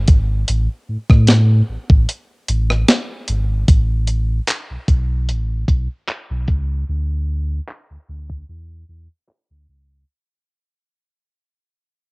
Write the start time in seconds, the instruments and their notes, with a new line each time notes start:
0.08 sub bass G#1, kick, closed hi-hat
0.48 sub bass A1, closed hi-hat
0.89 sub bass A2
1.10 sub bass A2, kick, cross-stick
1.27 snare, closed hi-hat
1.69 sub bass A1
1.90 sub bass A1, kick
2.09 closed hi-hat
2.48 sub bass A1, closed hi-hat
2.70 cross-stick
2.88 snare, closed hi-hat
3.28 sub bass G#1, closed hi-hat
3.68 sub bass A1, kick, closed hi-hat
4.07 closed hi-hat
4.47 clap, closed hi-hat
4.70 sub bass B1
4.88 sub bass B1, kick, closed hi-hat
5.29 sub bass A1, closed hi-hat
5.68 sub bass B1, kick, closed hi-hat
6.08 clap, closed hi-hat
6.30 sub bass B1
6.48 sub bass C#2, kick, closed hi-hat
6.89 sub bass D2
7.68 clap
7.90 sub bass D2
8.09 sub bass D2
8.30 kick
8.49 sub bass E2
8.88 sub bass E2
9.28 clap
9.50 sub bass D2
9.68 sub bass C#2